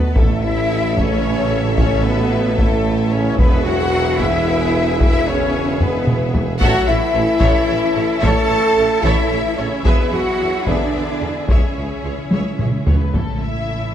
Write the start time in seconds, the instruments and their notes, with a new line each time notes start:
Already playing: trombone section B2, string section A3 F#4 A4 A5, cello section B3, french horn section B3, flute section B4, violin section B4
0.14 double bass section A1, tuba A1, trombone section A2, string section A3 E4 A4 E5, cello section A3, french horn section A3, violin section A4 E5, viola section A4, flute section A4, taiko
0.43 trombone section E3, french horn section E4, cello section E4, flute section E5, violin section E5
0.97 trombone section C#3, french horn section C#4, cello section C#4, violin section C#5, flute section C#5, taiko
1.77 trombone section C#3, french horn section C#4, cello section C#4, violin section C#5, flute section C#5, taiko
2.04 trombone section B2, cello section B3, french horn section B3, violin section B4, flute section B4
2.57 trombone section A2, cello section A3, french horn section A3, violin section A4, flute section A4, taiko
3.11 trombone section C#3, cello section C#4, french horn section C#4, violin section C#5, flute section C#5
3.38 tuba E1, double bass section E1, trombone section B2, cello section B3, string section B3 G#4, french horn section B3, viola section G#4 B4, flute section B4, violin section B4 E5, taiko
3.65 trombone section F#3, cello section F#4, french horn section F#4, flute section F#5, violin section F#5
4.19 trombone section E3, cello section E4, french horn section E4, flute section E5, violin section E5, taiko
5.00 trombone section E3, cello section E4, french horn section E4, violin section E5, flute section E5, taiko
5.26 trombone section C#3, cello section C#4, french horn section C#4, flute section C#5, violin section C#5
5.80 trombone section B2, cello section B3, french horn section B3, flute section B4, violin section B4, taiko low-mid
6.07 taiko mid
6.34 taiko low
6.60 tuba A1, double bass section A1, trombone section F#3, string section C#4 E4 A4 E5, french horn section F#4, cello section F#4, viola section A4 C#5, violin section E5 F#5, flute section F#5, taiko
6.87 tuba A1, double bass section A1, trombone section E3, french horn section E4, cello section E4, viola section A4 C#5, violin section E5, flute section E5
7.14 double bass section A1, tuba A1, viola section A4, violin section C#5
7.40 double bass section A1, tuba A1, viola section A4 C#5, violin section E5, taiko
7.68 double bass section A1, tuba A1, viola section A4 C#5, violin section E5
7.95 double bass section A1, tuba A1, viola section A4, violin section C#5
8.22 double bass section A1, tuba A1, trombone section A3, french horn section A4, viola section A4 C#5, cello section A4, violin section E5 A5, flute section A5, taiko
8.49 double bass section A1, tuba A1, viola section A4 C#5, violin section E5
8.77 tuba A1, double bass section A1, viola section A4, violin section C#5
9.02 double bass section A1, tuba A1, trombone section E3, french horn section E4, cello section E4, viola section A4 C#5, flute section E5, violin section E5, taiko
9.31 tuba A1, double bass section A1, viola section A4 C#5, violin section E5
9.57 double bass section A1, tuba A1, trombone section C#3, french horn section C#4, cello section C#4, viola section A4, violin section C#5, flute section C#5
9.85 tuba E1, double bass section E2, trombone section B2, french horn section B3, cello section B3, string section B3 G#4, viola section G#4 B4, flute section B4, violin section B4 E5, taiko
10.11 tuba E1, double bass section E2, trombone section F#3, french horn section F#4, cello section F#4, viola section G#4 B4, violin section E5 F#5, flute section F#5
10.39 tuba E1, double bass section E2, viola section G#4, violin section B4
10.65 tuba E1, double bass section E2, trombone section D3, french horn section D4, cello section D4, viola section G#4 B4, flute section D5, violin section D5 E5, taiko
10.93 tuba E1, double bass section E2, viola section G#4 B4, violin section E5
11.20 tuba E1, double bass section E2, viola section G#4, violin section B4
11.48 double bass section C#2, tuba C#2, timpani C#3, trombone section C#3, french horn section C#4, string section C#4, cello section C#4, viola section G#4 C#5, flute section C#5, violin section C#5 E5, taiko
11.57 timpani C#3
11.64 timpani C#3
11.72 double bass section C#2, timpani C#3, viola section C#5
11.76 tuba C#2, timpani C#3, viola section G#4, violin section E5
11.88 timpani C#3
12.03 tuba C#2, double bass section C#2, timpani C#3, viola section G#4, violin section C#5
12.10 timpani C#3
12.18 timpani C#3
12.25 timpani C#3
12.31 tuba C#2, double bass section C#2, timpani C#3, viola section G#4 C#5, violin section E5, taiko high
12.40 timpani C#3
12.48 timpani C#3
12.56 double bass section C#2, tuba C#2, timpani C#3, viola section G#4 C#5, taiko mid
12.60 timpani C#3, violin section E5
12.71 timpani C#3
12.79 timpani C#3
12.86 tuba C#2, double bass section C#2, timpani C#3, viola section B3 G#4, violin section B4 C#5, taiko low
12.94 timpani C#3
13.01 timpani C#3
13.14 double bass section A1, cello section A2, viola section A3, french horn section A3 C#4, string section C#4 E4 A4 E5, violin section A4, taiko
13.40 viola section E4, violin section E5